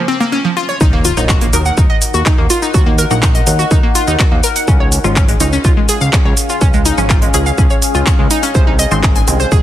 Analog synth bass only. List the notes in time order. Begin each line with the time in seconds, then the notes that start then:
0.81 D#2
1.17 A#1
1.53 D#2
1.78 D#2
2.14 D#2
2.38 D#2
2.74 D#2
3.11 A#1
3.47 D#2
3.71 D#2
4.08 D#2
4.32 D#2
4.68 C#2
5.04 G#1
5.40 C#2
5.65 C#2
6.01 C#2
6.25 C#2
6.61 C#2
6.98 G#1
7.34 C#2
7.58 C#2
7.95 C#2
8.19 C#2
8.55 C2
8.91 G#1
9.28 C2
9.52 C2